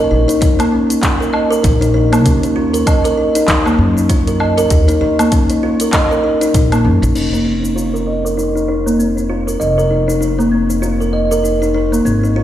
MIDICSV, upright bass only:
0, 0, Header, 1, 2, 480
1, 0, Start_track
1, 0, Tempo, 612245
1, 1770, Time_signature, 4, 2, 24, 8
1, 9748, End_track
2, 0, Start_track
2, 0, Title_t, "Upright bass"
2, 0, Program_c, 0, 32
2, 86, Note_on_c, 0, 34, 68
2, 194, Note_off_c, 0, 34, 0
2, 1286, Note_on_c, 0, 34, 92
2, 1768, Note_off_c, 0, 34, 0
2, 1768, Note_on_c, 0, 39, 88
2, 2210, Note_off_c, 0, 39, 0
2, 2728, Note_on_c, 0, 39, 95
2, 2920, Note_off_c, 0, 39, 0
2, 2967, Note_on_c, 0, 42, 83
2, 3649, Note_off_c, 0, 42, 0
2, 3692, Note_on_c, 0, 39, 87
2, 3797, Note_off_c, 0, 39, 0
2, 3928, Note_on_c, 0, 39, 72
2, 4035, Note_off_c, 0, 39, 0
2, 5129, Note_on_c, 0, 34, 86
2, 5367, Note_on_c, 0, 42, 77
2, 5379, Note_off_c, 0, 34, 0
2, 5475, Note_off_c, 0, 42, 0
2, 5506, Note_on_c, 0, 34, 94
2, 5584, Note_off_c, 0, 34, 0
2, 5608, Note_on_c, 0, 29, 73
2, 7509, Note_off_c, 0, 29, 0
2, 7533, Note_on_c, 0, 29, 74
2, 9432, Note_off_c, 0, 29, 0
2, 9449, Note_on_c, 0, 32, 77
2, 9748, Note_off_c, 0, 32, 0
2, 9748, End_track
0, 0, End_of_file